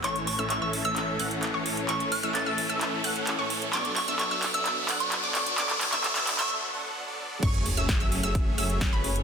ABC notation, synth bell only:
X:1
M:4/4
L:1/16
Q:1/4=130
K:F#m
V:1 name="Synth bell"
c' z c' z c' c' z e'4 z4 z | c' z f'2 a'3 z8 z | c' z c' z c' c' z e' e' z2 c'3 c' z | z3 c' z3 c' z8 |
z16 |]